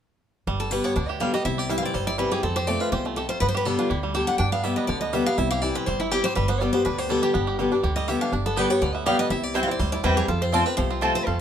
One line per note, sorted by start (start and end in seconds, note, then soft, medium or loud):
0.47 0.79 G1 medium
0.47 0.94 G2 medium
0.47 0.71 G3 medium
0.60 0.71 A4 medium
0.71 0.94 D3 medium
0.71 0.95 G3 medium
0.71 1.07 G3 medium
0.71 0.95 B3 medium
0.71 0.96 G4 medium
0.71 0.84 B4 medium
0.84 1.18 B3 medium
0.84 0.95 C#5 medium
0.96 1.28 D2 medium
0.96 1.19 D3 medium
0.96 1.31 D4 medium
0.96 1.08 D5 medium
1.08 1.33 G4 medium
1.08 1.20 E5 medium
1.20 1.33 D3 medium
1.20 1.33 G3 medium
1.20 1.45 G3 medium
1.20 1.34 B3 medium
1.20 1.32 G4 medium
1.20 1.33 F5 medium
1.33 1.46 B3 soft
1.33 1.44 G4 soft
1.33 1.45 G4 medium
1.33 1.45 D#5 medium
1.45 1.77 C2 medium
1.45 1.92 C3 medium
1.45 1.68 E4 medium
1.45 1.59 E5 medium
1.58 1.92 G4 medium
1.58 1.70 D5 medium
1.69 1.93 E3 medium
1.69 1.93 G3 medium
1.69 1.94 C4 medium
1.69 2.05 E4 medium
1.69 1.94 E4 medium
1.69 1.77 E5 medium
1.78 1.85 F5 loud
1.83 2.16 C4 medium
1.83 1.94 D5 medium
1.94 2.26 G1 medium
1.94 2.41 G2 medium
1.94 2.17 G3 medium
1.94 2.07 C5 medium
2.07 2.41 E4 medium
2.07 2.18 D5 loud
2.18 2.42 E3 medium
2.18 2.43 G3 medium
2.18 2.42 G3 loud
2.18 2.43 C4 medium
2.18 2.43 E4 medium
2.18 2.32 B4 medium
2.31 2.43 G4 medium
2.31 2.43 G#4 medium
2.43 2.75 F2 medium
2.43 2.90 F2 medium
2.43 2.78 C4 medium
2.43 2.56 A4 medium
2.56 2.90 G4 medium
2.56 2.67 C5 medium
2.67 2.91 F3 medium
2.67 3.03 A3 medium
2.67 2.91 A3 medium
2.67 2.92 C4 medium
2.67 2.92 F4 medium
2.67 2.80 D5 medium
2.80 3.15 F4 medium
2.80 2.92 B4 medium
2.92 3.24 C2 medium
2.92 3.16 E2 medium
2.92 3.16 G4 medium
2.92 3.05 C5 medium
3.05 3.39 A3 medium
3.05 3.16 F4 soft
3.16 3.41 F2 medium
3.16 3.42 G4 medium
3.16 3.28 A4 medium
3.29 3.42 F4 medium
3.29 3.40 C5 medium
3.40 3.73 G2 medium
3.40 3.88 G2 medium
3.40 3.77 B3 medium
3.40 3.48 B4 medium
3.49 3.56 C5 medium
3.55 3.90 G4 medium
3.55 3.65 B4 medium
3.65 3.89 D3 medium
3.65 4.03 G3 medium
3.65 3.90 G3 medium
3.65 3.90 B3 medium
3.65 3.90 G4 medium
3.65 3.78 A4 medium
3.79 4.13 D4 medium
3.79 3.90 F4 medium
3.90 4.23 D2 medium
3.90 4.13 D3 medium
3.90 3.98 E4 medium
3.90 4.14 G4 medium
4.03 4.63 G3 medium
4.14 4.38 D3 medium
4.14 4.39 G3 medium
4.14 4.39 B3 medium
4.14 5.51 G4 medium
4.14 4.39 G4 loud
4.14 4.27 A5 medium
4.27 4.38 D4 medium
4.27 4.38 F#5 medium
4.38 4.71 G2 medium
4.38 4.87 G2 medium
4.38 4.75 D4 medium
4.38 4.52 G5 medium
4.52 4.76 B3 medium
4.52 4.63 F5 loud
4.63 4.87 D3 medium
4.63 5.13 G3 medium
4.63 4.88 G3 medium
4.63 4.88 B3 medium
4.63 4.89 G4 medium
4.63 4.76 E5 medium
4.76 5.00 B3 medium
4.76 4.87 D#5 medium
4.87 5.21 D2 medium
4.87 5.11 D3 medium
4.87 5.24 D3 medium
4.87 5.00 D5 medium
5.01 5.25 B3 medium
5.01 5.13 D#5 medium
5.13 5.26 D3 medium
5.13 5.87 G3 medium
5.13 5.26 G3 medium
5.13 5.27 B3 medium
5.13 5.25 G4 loud
5.13 5.26 E5 medium
5.26 5.38 B3 medium
5.26 5.37 G4 medium
5.26 5.38 F5 loud
5.38 5.70 C2 medium
5.38 5.85 C3 medium
5.38 5.62 E4 medium
5.38 5.50 E5 medium
5.51 6.25 G4 medium
5.51 5.62 F5 loud
5.62 5.86 E3 medium
5.62 5.86 G3 medium
5.62 5.87 C4 medium
5.62 5.98 E4 medium
5.62 5.87 E4 medium
5.62 5.75 D5 medium
5.75 6.10 C4 medium
5.75 5.86 B4 medium
5.86 6.19 G1 medium
5.86 6.34 G2 medium
5.86 6.11 G3 medium
5.86 5.99 C5 medium
6.00 6.11 E4 medium
6.00 6.34 E4 medium
6.11 6.24 E3 medium
6.11 6.36 G3 medium
6.11 6.25 G3 medium
6.11 6.25 C4 medium
6.11 6.23 E4 medium
6.11 6.24 G4 medium
6.24 6.37 C4 soft
6.24 6.36 E4 medium
6.24 6.98 G4 medium
6.24 6.35 C5 loud
6.35 6.69 G1 medium
6.35 6.83 G2 medium
6.35 6.61 G3 medium
6.35 6.48 B4 medium
6.48 6.74 B3 medium
6.48 6.60 C5 medium
6.60 6.73 D3 medium
6.60 7.10 G3 medium
6.60 6.74 G3 medium
6.60 6.74 B3 medium
6.60 6.73 G4 medium
6.60 6.72 D5 medium
6.73 7.34 B3 medium
6.73 6.86 B3 medium
6.73 6.85 G4 medium
6.73 6.84 C5 medium
6.85 7.18 D2 medium
6.85 7.08 D3 medium
6.85 7.71 D4 medium
6.85 6.98 B4 medium
6.98 7.22 G4 medium
6.98 7.10 C5 medium
7.09 7.33 D3 medium
7.09 7.58 G3 medium
7.09 7.33 G3 medium
7.09 7.34 B3 medium
7.09 7.34 G4 medium
7.09 7.23 A4 medium
7.23 7.47 G4 medium
7.23 7.56 G4 medium
7.34 7.67 G1 medium
7.34 7.81 G2 medium
7.34 7.69 B3 medium
7.47 7.83 G4 medium
7.59 7.72 D3 medium
7.59 7.96 G3 medium
7.59 7.72 G3 medium
7.59 7.72 B3 medium
7.59 7.71 G4 medium
7.72 7.84 B3 medium
7.72 8.06 D4 medium
7.72 7.83 G4 medium
7.83 8.15 D2 medium
7.83 8.07 D3 medium
7.83 8.08 G4 medium
7.96 8.30 G3 medium
7.96 8.08 D#5 medium
8.08 8.32 D3 medium
8.08 8.32 G3 medium
8.08 8.32 B3 loud
8.08 8.43 G4 medium
8.08 8.33 G4 medium
8.08 8.21 E5 medium
8.21 8.31 D4 medium
8.21 8.32 F5 medium
8.32 8.64 G1 medium
8.32 8.80 G2 loud
8.32 8.68 D4 medium
8.46 8.69 B3 medium
8.46 8.57 A4 medium
8.56 8.69 D3 medium
8.56 8.92 G3 medium
8.56 8.70 G3 medium
8.56 8.66 B3 medium
8.56 8.70 B3 medium
8.56 8.67 G4 loud
8.56 8.68 G4 medium
8.56 8.70 B4 medium
8.56 8.67 D5 medium
8.56 8.67 G5 medium
8.70 8.93 B3 medium
8.70 8.82 B3 medium
8.70 8.81 G4 medium
8.70 8.81 C#5 medium
8.81 9.14 D2 medium
8.81 9.05 D3 medium
8.81 9.17 D3 medium
8.81 8.95 D5 medium
8.95 9.19 B3 medium
8.95 9.06 E5 medium
9.06 9.29 D3 medium
9.06 9.31 G3 medium
9.06 9.30 G3 medium
9.06 9.15 B3 medium
9.06 9.30 B3 medium
9.06 9.16 G4 medium
9.06 9.31 G4 loud
9.06 9.16 D5 loud
9.06 9.19 F5 medium
9.06 9.16 G5 loud
9.19 9.31 B3 medium
9.19 9.30 D#5 loud
9.30 9.62 C2 medium
9.30 9.78 C3 medium
9.30 9.54 E4 medium
9.30 9.43 E5 medium
9.43 9.55 D5 medium
9.54 9.67 E3 medium
9.54 9.68 G3 medium
9.54 9.64 C4 medium
9.54 9.68 C4 medium
9.54 9.65 E4 medium
9.54 9.90 E4 medium
9.54 9.66 E4 medium
9.54 9.65 C5 medium
9.54 9.62 E5 medium
9.54 9.65 G5 medium
9.63 9.71 F5 medium
9.67 10.41 C4 medium
9.67 9.80 C4 medium
9.67 9.79 E4 medium
9.67 9.79 D5 medium
9.79 10.00 D2 medium
9.79 10.26 G2 medium
9.79 10.03 G3 medium
9.79 9.92 C5 medium
9.92 10.26 E4 medium
9.92 10.04 D5 loud
10.03 10.25 E2 medium
10.03 10.27 E3 medium
10.03 10.29 G3 medium
10.03 10.28 G3 medium
10.03 10.14 C4 medium
10.03 10.28 C4 medium
10.03 10.14 E4 loud
10.03 10.28 E4 medium
10.03 10.17 B4 medium
10.03 10.14 C5 loud
10.03 10.14 G5 loud
10.17 10.29 G4 medium
10.17 10.28 G#4 medium
10.28 10.60 F2 medium
10.28 10.76 F2 medium
10.28 10.64 F4 medium
10.28 10.41 A4 medium
10.42 10.65 C4 medium
10.42 10.54 C5 medium
10.52 10.65 F3 medium
10.52 10.88 A3 medium
10.52 10.66 A3 medium
10.52 10.62 C4 medium
10.52 10.66 C4 medium
10.52 10.63 F4 medium
10.52 10.64 F4 medium
10.52 10.63 C5 loud
10.52 10.66 D5 medium
10.52 10.63 A5 loud
10.65 10.89 C4 medium
10.65 10.78 C4 medium
10.65 10.77 F4 medium
10.65 10.76 B4 medium
10.77 11.10 C2 medium
10.77 11.24 C3 medium
10.77 11.13 F3 medium
10.77 10.90 C5 loud
10.90 11.14 C4 medium
10.90 11.02 F4 soft
11.01 11.25 F3 medium
11.01 11.37 A3 medium
11.01 11.26 A3 medium
11.01 11.12 C4 medium
11.01 11.26 C4 medium
11.01 11.12 F4 medium
11.01 11.26 F4 medium
11.01 11.15 A4 medium
11.01 11.12 C5 loud
11.01 11.12 A5 loud
11.15 11.41 C4 medium
11.15 11.26 C5 loud
11.26 11.41 F2 medium
11.26 11.41 F4 medium
11.26 11.39 A4 medium